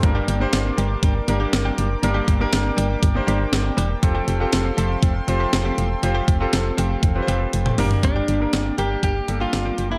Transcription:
<<
  \new Staff \with { instrumentName = "Analog synth pad" } { \time 4/4 \key g \minor \tempo 4 = 120 << { <bes' d'' d'''>1~ | <bes' d'' d'''>1 | <a' f'' c'''>1~ | <a' f'' c'''>2.~ <a' f'' c'''>8 r8 |
<bes d'' d'''>1 | } \\ { g''1~ | g''1~ | g''1~ | g''1 |
g''1 | } >> }
  \new Staff \with { instrumentName = "Grand piano" } { \time 4/4 \key g \minor <bes d' g' bes'>8. <bes d' g' c''>4. r16 <bes d' g' bes'>4~ <bes d' g' bes'>16 r16 | <bes d' g' bes'>8. <bes d' g' bes'>4~ <bes d' g' bes'>16 r16 <bes d' g' c''>4. r16 | <c' f' g' a'>8. <c' f' g' a'>4. r16 <c' f' g' c''>4~ <c' f' g' c''>16 r16 | <c' f' g' c''>8. <c' f' g' a'>4~ <c' f' g' a'>16 r16 <c' f' g' b' c''>4~ <c' f' g' b' c''>16 <bes d' g' bes'>8 |
<bes d' g' bes'>8. <bes d' g' bes'>8. <bes d' g' bes'>8. r16 <bes d' g' a'>4 r16 <bes d' g' bes'>16 | }
  \new Staff \with { instrumentName = "Grand piano" } { \clef bass \time 4/4 \key g \minor g,4. r2 r8 | g,4. r4 bes''8 g''4 | r1 | r1 |
g,4. r2 r8 | }
  \new Staff \with { instrumentName = "Clean electric guitar" } { \time 4/4 \key g \minor r1 | r1 | r1 | r1 |
d'4. g'8 g'8. f'4 e'16 | }
  \new Staff \with { instrumentName = "Clean electric guitar" } { \time 4/4 \key g \minor r16 <g bes d' g'>16 <g bes d' g'>16 r8. <g bes d' g'>16 <g bes d' g'>16 <g bes d' g'>16 r8 <g bes d' g'>16 r16 <g bes d' g'>16 <g bes d' g'>16 r16 | r16 <g bes d' g'>16 <g bes d' g'>16 r8. <g bes d' g'>16 <g bes d' g'>16 r8 <g bes d' g'>16 r8. <g bes d' g'>16 r16 | r16 <f a c' g'>16 <f a c' g'>16 r8. <f a c' g'>16 <f a c' g'>16 <f a c' g'>16 r8 <f a c' g'>16 r16 <f a c' g'>16 <f a c' g'>16 r16 | r16 <f a c' g'>16 <f a c' g'>16 r8. <f a c' g'>16 <f a c' g'>16 r8 <f a c' g'>16 r8 <f a c' g'>16 <g bes d' g'>16 r16 |
r16 <g bes d' g'>16 <g bes d' g'>16 r8. <g bes d' g'>16 <g bes d' g'>16 <g bes d' g'>16 r8 <g bes d' g'>16 r16 <g bes d' g'>16 <g bes d' g'>16 r16 | }
  \new Staff \with { instrumentName = "FM bass" } { \clef bass \time 4/4 \key g \minor g,,8 g,,8 g,,8 g,,8 g,,8 g,,8 g,,8 fis,,8 | g,,8 g,,8 g,,8 g,,8 g,,8 g,,8 g,,8 e,,8 | f,,8 f,,8 f,,8 f,,8 f,,8 f,,8 f,,8 e,,8 | f,,8 f,,8 f,,8 f,,8 f,,8 f,,8 f,,8 g,,8 |
g,,8 g,,8 g,,8 g,,8 g,,8 g,,8 g,,8 fis,,8 | }
  \new DrumStaff \with { instrumentName = "Drums" } \drummode { \time 4/4 <hh bd>8 hh8 <hh sn>8 hh8 <hh bd>8 hh8 <hh sn>8 hh8 | hh8 <hh bd>8 <hh sn>8 hh8 <hh bd>8 hh8 <hh sn>8 hh8 | <hh bd>8 hh8 <hh sn>8 hh8 <hh bd>8 hh8 <hh sn>8 hh8 | hh8 <hh bd>8 <hh sn>8 hh8 <hh bd tommh>8 hh8 hh16 toml16 <hho tomfh>16 tomfh16 |
<hh bd>8 hh8 <hh sn>8 hh8 <hh bd>8 hh8 <hh sn>8 hh8 | }
>>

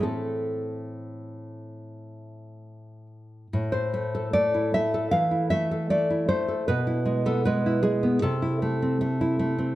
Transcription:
\new Staff \with { instrumentName = "Nylon-string guitar" } { \time 4/4 \key a \minor \tempo 4 = 76 << { a'2.~ a'8 r8 | r16 c''8. d''8 e''8 f''8 e''8 d''8 c''8 | b'8. a'16 b'8 gis'8 a'4. r8 | } \\ { <a, a c'>1 | a,16 e'16 a16 a'16 a16 e'16 a16 a'16 e16 e'16 a16 a'16 a16 e'16 a16 a'16 | b,16 e'16 gis16 b16 gis16 e'16 gis16 b16 c16 e'16 a16 c'16 a16 e'16 a16 c'16 | } >> }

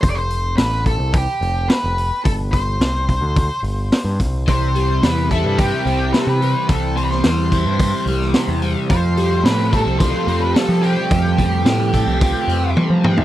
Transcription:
<<
  \new Staff \with { instrumentName = "Lead electric guitar" } { \time 4/4 \key f \lydian \tempo 4 = 108 c''32 d''32 c''8. b'8 a'8 g'4 b'4 | a'8 c''2 r4. | c''4 b'8 a'8 g'4 b'32 a'32 b'8. | a'8 c''32 b'32 c''4.~ c''16 r4. |
c''4 b'8 a'8 c''8. b'16 a'8 g'8~ | g'2. r4 | }
  \new Staff \with { instrumentName = "String machine" } { \time 4/4 \key f \lydian << { r1 | r1 | <e g g'>1~ | <e g g'>1 |
<f a g'>1~ | <f a g'>1 | } \\ { r1 | r1 | c'1~ | c'1~ |
c'1 | b'1 | } >> }
  \new Staff \with { instrumentName = "Overdriven electric guitar" } { \clef bass \time 4/4 \key f \lydian r1 | r1 | c8 g8 g8 e'8 c'8 g8 c8 g8 | c8 g8 g8 e'8 c'8 g8 c8 g8 |
f8 g8 c'8 a'8 f'8 c'8 g8 c'8 | f8 g8 c'8 a'8 f'8 c'8 g8 c'8 | }
  \new Staff \with { instrumentName = "Picked electric bass" } { \clef bass \time 4/4 \key f \lydian f,,4 a,,8. c,8 r16 f,,8 r16 f,,8 r16 | g,,4 c,8. d,8 r16 g,,8 r16 g,16 c,8~ | c,4 e,8. g,8 r16 c,8 r16 c8 r16 | c,4 e,8. g,8 r16 c,8 r16 e,8 r16 |
f,4 a,8. c,8 r16 f,8 r16 f8 r16 | f,4 a,8. c,8 r16 f,8 r16 f8 r16 | }
  \new DrumStaff \with { instrumentName = "Drums" } \drummode { \time 4/4 <hho bd>8 hho8 <hho sn>8 <hho bd>8 <hho bd>8 hho8 <hho sn>8 hho8 | <hho bd>8 <hho bd>8 <hho sn>8 <hho bd>8 <hho bd>8 hho8 <hho sn>8 <hho bd>8 | <hho bd>8 hho8 <hho sn>8 <hho bd>8 <hho bd>8 hho8 <hho sn>8 hho8 | <hho bd>8 hho16 sn16 <hho sn>8 <hho bd>8 <hho bd>8 hho16 sn16 <hho sn>8 hho8 |
<hho bd>8 hho8 <hho sn>8 <hho bd>8 <hho bd>8 hho8 <hho sn>8 hho8 | <hho bd>8 <hho bd>8 <hho sn>8 <hho bd>8 <hho bd>8 hho8 tommh8 toml16 tomfh16 | }
>>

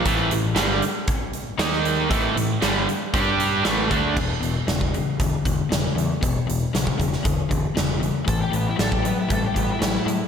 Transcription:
<<
  \new Staff \with { instrumentName = "Lead electric guitar" } { \time 4/4 \key a \major \tempo 4 = 117 r1 | r1 | r1 | r1 |
a'16 g'16 b16 e'16 a'16 g'16 b16 e'16 a'16 g'16 b16 e'16 e'8 r8 | }
  \new Staff \with { instrumentName = "Overdriven electric guitar" } { \clef bass \time 4/4 \key a \major <a, e a>8 <a, e>8 <g, d g>8 r4. <dis ais dis'>4 | <a, e a>8 <a, e>8 <g, d g>8 r8 <g d' g'>4 <a, e a>8 <d a d'>8 | r1 | r1 |
r1 | }
  \new Staff \with { instrumentName = "Overdriven electric guitar" } { \clef bass \time 4/4 \key a \major <a, e a>8 <a, e>8 <g, d g>8 r4. <dis ais dis'>4 | <a, e a>8 <a, e>8 <g, d g>8 r8 <g d' g'>4 <a, e a>8 <d a d'>8 | <e, b,>8 <e, b,>8 <e, cis>8 <e, cis>8 <e, d>8 <e, d>8 <e, cis>8 <e, cis>8 | <e, b,>8 <e, b,>8 <e, cis>8 <e, cis>8 <e, d>8 <e, d>8 <e, cis>8 <e, cis>8 |
<a, e>8 <a, e>8 <a, fis>8 <a, fis>8 <a, g>8 <a, g>8 <a, fis>8 <a, fis>8 | }
  \new Staff \with { instrumentName = "Picked electric bass" } { \clef bass \time 4/4 \key a \major a,,8 a,,8 g,,8 r4. dis,4 | a,,8 a,,8 g,,8 r8 g,4 a,,8 d,8 | e,,8 e,,8 e,,4 e,,8 e,,8 e,,8 e,8 | e,,8 e,,8 b,,8 e,,8 e,,8 e,,8 e,,4 |
a,,8 a,,8 a,,4 a,,8 a,,8 a,,8 a,8 | }
  \new DrumStaff \with { instrumentName = "Drums" } \drummode { \time 4/4 <hh bd>8 hh8 <hh sn>8 hh8 <hh bd>8 hh8 <hh sn>16 sn16 hh8 | <hh bd>8 hh8 <hh sn>8 hh8 <hh bd>8 hh8 <hh sn>8 <hh bd>8 | <cymc bd>8 hh8 <hh sn>16 bd16 hh8 <hh bd>8 <hh bd>8 <hh sn>8 hh8 | <hh bd>8 hh8 <hh sn>16 bd16 <hh bd>16 sn16 <hh bd>8 <hh bd>8 <hh sn>8 hh8 |
<hh bd>8 hh8 <hh sn>16 bd16 hh8 <hh bd>8 <hh bd>8 <hh sn>8 hh8 | }
>>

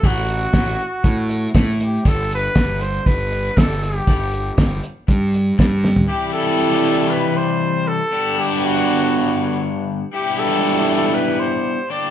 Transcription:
<<
  \new Staff \with { instrumentName = "Trumpet" } { \time 4/4 \key g \major \tempo 4 = 119 fis'2. r8 g'8 | a'8 b'4 c''8 b'4 a'8 g'8~ | g'4. r2 r8 | g'8 a'4. b'8 c''4 a'8~ |
a'8 g'8 fis'2 r4 | g'8 a'4. b'8 c''4 d''8 | }
  \new Staff \with { instrumentName = "Clean electric guitar" } { \clef bass \time 4/4 \key g \major r1 | r1 | r1 | <c e g e' g'>1 |
<g b d'>1 | <g, d e g b e'>2.~ <g, d e g b e'>8 <g bes d' e'>8 | }
  \new Staff \with { instrumentName = "Overdriven electric guitar" } { \clef bass \time 4/4 \key g \major <a, e a>8 <a, e>8 <a, e a>8 <a, e>8 <a, e>8 e8 <a, e a>8 <a, e>8 | <g, d g>8 <g, d>8 <g, d g>8 <g, d>8 <g, d>8 <g, d>8 <g, d g>8 <g, d>8 | <g, d g>8 <g, d>8 <g, d g>8 <g, d>8 <g, d>8 d8 <g, d g>8 <g, d>8 | <c e g e' g'>1 |
<g, d g b d' g'>1 | <g b e' g'>2.~ <g b e' g'>8 <g, d g bes d' g'>8 | }
  \new Staff \with { instrumentName = "Picked electric bass" } { \clef bass \time 4/4 \key g \major a,,4 a,,8 r8 a,4 a,4 | g,,4 g,,4 g,,4 g,,4 | g,,4 g,,8 r8 g,4 g,4 | r1 |
r1 | r1 | }
  \new DrumStaff \with { instrumentName = "Drums" } \drummode { \time 4/4 <hh bd>8 hh8 <hh bd sn>8 hh8 <hh bd>8 hh8 <hh bd sn>8 hh8 | <hh bd>8 hh8 <hh bd sn>8 hh8 <hh bd>8 hh8 <hh bd sn>8 hh8 | <hh bd>8 hh8 <hh bd sn>8 hh8 <hh bd>8 hh8 <hh bd sn>8 sn16 tomfh16 | r4 r4 r4 r4 |
r4 r4 r4 r4 | r4 r4 r4 r4 | }
>>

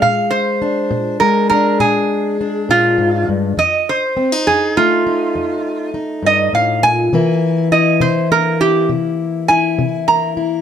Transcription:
<<
  \new Staff \with { instrumentName = "Resonator guitar played with a steel bar" } { \time 12/8 \key bes \major \tempo 4. = 68 f''8 c''4. bes'8 bes'8 aes'4. f'4 r8 | ees''8 c''4 aes'8 f'2 r8 ees''8 f''8 aes''8~ | aes''4 ees''8 c''8 bes'8 g'8 r4 aes''4 bes''4 | }
  \new Staff \with { instrumentName = "Steel-string acoustic guitar" } { \clef bass \time 12/8 \key bes \major << { aes4 d'4 aes8 d'4. d'2 | r4 c'16 ees'8. a8 ees'4. ees'2 | <e bes e'>4 e'4 bes8 e'4. e'4 bes8 e'8 | } \\ { bes,4 r8 bes,4 r8 bes,4 r8 bes,8 aes,8 g,8 | f,4 r8 f,4 r8 f,4 r8 g,8 a,8 bes,8 | c4 r8 c4 r8 c4 r8 c4 r8 | } >> }
>>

